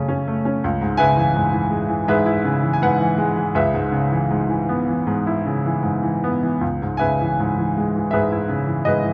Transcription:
0.00 0.58 F#2 soft
0.00 0.65 C#3 soft
0.00 0.27 A3 soft
0.00 0.08 C#4 soft
0.08 0.44 C#4 soft
0.27 0.62 A3 soft
0.45 0.63 C#4 soft
0.64 3.52 C#2 soft
0.81 1.34 G#2 soft
0.97 2.42 C#3 soft
0.97 2.07 B4 soft
0.97 2.07 E5 soft
0.97 2.11 G#5 medium
1.17 1.51 E3 soft
1.35 2.06 G#2 soft
1.53 1.87 E3 soft
1.71 3.14 G#3 soft
1.88 2.62 E3 soft
2.08 2.80 G#2 soft
2.08 3.52 G#4 soft
2.08 2.81 B4 soft
2.08 2.77 E5 medium
2.26 3.51 E4 soft
2.45 3.52 C#3 soft
2.63 2.99 E3 soft
2.73 2.81 G#5 soft
2.82 3.53 G#2 soft
2.82 3.52 B4 soft
2.82 3.58 F#5 medium
3.01 3.35 E3 soft
3.18 3.54 G#3 soft
3.36 3.55 E3 soft
3.55 6.57 C#2 medium
3.55 5.79 G#4 soft
3.55 5.79 B4 soft
3.55 5.79 E5 medium
3.74 4.29 G#2 soft
3.92 5.40 C#3 soft
4.12 4.47 E3 soft
4.30 5.05 G#2 soft
4.49 4.85 E3 soft
4.69 6.19 B3 soft
4.87 5.64 E3 soft
5.07 5.81 G#2 soft
5.27 6.59 E4 soft
5.46 6.59 C#3 soft
5.66 6.01 E3 soft
5.83 6.59 G#2 soft
6.03 6.41 E3 soft
6.24 6.61 B3 soft
6.43 6.61 E3 soft
6.61 9.13 C#2 soft
6.82 7.38 G#2 soft
6.97 8.12 B4 soft
6.97 8.09 E5 soft
6.97 8.15 G#5 medium
7.01 8.46 C#3 soft
7.22 7.57 E3 soft
7.40 8.12 G#2 soft
7.58 7.94 E3 soft
7.77 9.13 G#3 soft
7.96 8.65 E3 soft
8.11 8.85 G#2 soft
8.11 8.85 G#4 soft
8.11 8.85 B4 soft
8.11 8.81 E5 soft
8.32 9.13 E4 soft
8.49 9.13 C#3 soft
8.67 9.03 E3 soft
8.85 9.13 G#2 soft
8.85 9.13 G#4 soft
8.85 9.13 B4 soft
8.85 9.13 D#5 medium
9.04 9.13 E3 soft

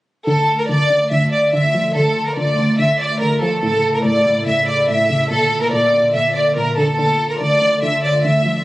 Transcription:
0.27 0.68 D3 medium
0.27 3.59 D3 medium
0.27 5.27 A3 medium
0.27 3.59 F4 medium
0.27 8.64 A4 medium
0.27 0.57 A4 medium
0.59 0.67 A#4 medium
0.69 0.89 D3 medium
0.69 1.09 D5 medium
0.90 1.10 D3 medium
1.11 1.52 D3 medium
1.11 1.29 E5 medium
1.32 1.50 D5 medium
1.53 1.94 D3 medium
1.53 1.93 E5 medium
1.74 2.79 F3 medium
1.95 2.36 D3 loud
1.95 2.25 A4 loud
2.27 2.35 A#4 medium
2.37 2.57 D3 medium
2.37 2.76 D5 medium
2.58 2.78 D3 medium
2.79 3.20 D3 medium
2.79 2.96 E5 medium
3.00 3.17 D5 medium
3.21 3.63 D3 medium
3.21 3.38 A#4 medium
3.42 3.63 F3 medium
3.42 3.59 A4 medium
3.63 4.04 A2 medium
3.63 5.29 C#3 medium
3.63 5.29 E4 medium
3.63 3.92 A4 loud
3.94 4.03 A#4 medium
4.05 4.25 A2 medium
4.05 4.44 D5 medium
4.26 4.46 A2 medium
4.47 4.87 A2 medium
4.47 4.64 E5 medium
4.68 4.85 D5 medium
4.89 5.31 A2 medium
4.89 5.28 E5 medium
5.10 5.31 C#3 medium
5.31 5.71 A#2 medium
5.31 8.64 D3 medium
5.31 6.97 A#3 medium
5.31 8.64 F4 medium
5.31 5.60 A4 loud
5.62 5.71 A#4 medium
5.73 5.92 A#2 medium
5.73 6.12 D5 medium
5.94 6.13 A#2 medium
6.15 6.55 A#2 medium
6.15 6.32 E5 medium
6.36 6.53 D5 medium
6.57 6.99 A#2 medium
6.57 6.74 A#4 medium
6.78 6.97 D3 medium
6.78 6.95 A4 medium
6.99 7.39 D3 medium
6.99 8.64 A3 medium
6.99 7.28 A4 medium
7.30 7.39 A#4 medium
7.40 7.60 D3 medium
7.40 7.80 D5 medium
7.62 7.81 D3 medium
7.82 8.23 D3 medium
7.82 8.00 E5 medium
8.03 8.21 D5 medium
8.24 8.64 D3 medium
8.24 8.64 E5 medium
8.45 8.64 F3 medium

